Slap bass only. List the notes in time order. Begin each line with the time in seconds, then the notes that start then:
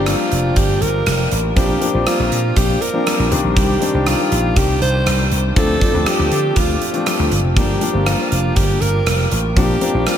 Already playing: G1
0.32 F1
0.56 G1
0.82 G1
1.07 F1
1.32 A1
1.57 A#1
1.94 A#1
2.19 A#1
2.32 A#2
2.57 A#1
3.19 A#1
3.32 C2
3.44 A#1
3.57 C2
3.94 C2
4.32 A#1
4.57 C2
4.82 C2
5.07 C2
5.32 C2
5.57 D2
5.94 D2
6.19 D2
6.32 D3
6.56 D2
7.19 D2
7.32 G1
7.44 F1
7.57 G1
7.94 G1
8.32 F1
8.57 G1
8.81 G1
9.07 F1
9.32 A1
9.57 A#1
9.94 A#1